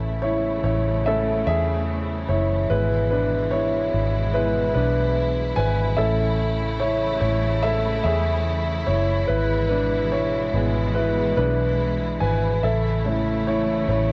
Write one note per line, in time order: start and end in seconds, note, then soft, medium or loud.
0.00 0.60 A1 medium
0.00 2.67 C#3 medium
0.00 5.94 E3 soft
0.00 1.07 A3 soft
0.00 2.67 A3 medium
0.00 1.07 C#4 soft
0.00 0.24 E4 soft
0.00 14.12 E4 medium
0.00 0.19 A4 medium
0.00 0.24 E5 medium
0.22 0.62 E4 medium
0.22 0.61 C#5 medium
0.64 1.43 A1 medium
0.64 1.04 E4 medium
0.64 1.07 C#5 medium
1.06 1.44 A3 soft
1.06 1.44 C#4 soft
1.06 1.44 E4 soft
1.06 1.17 A4 medium
1.06 1.15 E5 medium
1.47 2.25 E2 medium
1.47 2.26 G#4 medium
1.47 2.32 E5 medium
2.29 2.68 F#1 medium
2.29 2.68 E4 medium
2.29 2.71 C#5 medium
2.70 3.90 G#1 medium
2.70 5.95 B2 medium
2.70 3.25 G#3 soft
2.70 5.95 G#3 soft
2.70 3.26 B3 soft
2.70 3.09 E4 medium
2.70 3.09 B4 medium
3.11 3.50 D4 soft
3.11 3.54 B4 medium
3.51 4.31 E4 medium
3.51 4.36 C#5 medium
3.94 4.72 G#1 medium
4.34 4.71 G#3 soft
4.34 4.71 B3 soft
4.34 4.45 E4 medium
4.34 4.43 B4 medium
4.74 5.53 B1 medium
4.74 5.54 D4 soft
4.74 5.56 B4 medium
5.56 5.95 G#1 medium
5.56 5.67 B4 medium
5.56 5.66 G#5 medium
5.97 7.18 A1 medium
5.97 9.25 C#3 medium
5.97 14.12 E3 medium
5.97 9.24 A3 soft
5.97 9.25 A3 medium
5.97 9.24 C#4 soft
5.97 6.80 E4 soft
5.97 6.76 A4 medium
5.97 6.82 E5 medium
6.80 7.19 E4 medium
6.80 7.19 C#5 medium
7.21 8.00 A1 medium
7.21 7.60 E4 medium
7.21 7.64 C#5 medium
7.63 8.02 A4 medium
7.63 8.02 E5 medium
8.04 8.83 E2 medium
8.04 8.84 G#4 medium
8.04 8.83 E5 medium
8.86 9.26 F#1 medium
8.86 9.26 E4 medium
8.86 9.29 C#5 medium
9.28 10.50 G#1 medium
9.28 12.60 B2 medium
9.28 12.60 G#3 medium
9.28 9.68 E4 medium
9.28 9.67 B4 medium
9.69 10.09 D4 soft
9.69 10.12 B4 medium
10.12 10.54 E4 medium
10.12 10.98 C#5 medium
10.54 11.33 G#1 medium
10.54 11.75 G#3 soft
10.54 11.76 B3 soft
10.54 10.95 E4 soft
10.95 11.34 E4 soft
10.95 11.34 B4 medium
11.37 12.17 B1 medium
11.37 12.18 D4 soft
11.37 12.17 B4 medium
12.20 12.60 G#1 medium
12.20 12.31 B4 medium
12.20 12.30 G#5 medium
12.63 13.85 A1 medium
12.63 14.12 C#3 medium
12.63 14.12 A3 medium
12.63 13.43 A4 medium
12.63 13.43 E5 medium
13.05 14.12 A3 soft
13.05 14.12 C#4 soft
13.05 13.47 E4 soft
13.47 13.86 E4 medium
13.47 13.87 C#5 medium
13.89 14.12 A1 medium
13.89 14.12 E4 soft
13.89 14.12 C#5 medium